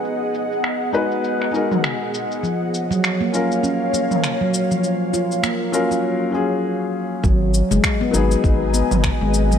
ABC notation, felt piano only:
X:1
M:4/4
L:1/8
Q:"Swing 16ths" 1/4=100
K:G#dor
V:1 name="Felt piano"
[G,DFB]3 [G,DFB]2 [G,DFA]3 | z3 [CEA]4- [CEA]- | [CEA]3 [F,CEA]2 [F,CEG]3 | z3 [F,B,DG]4- [F,B,DG] |]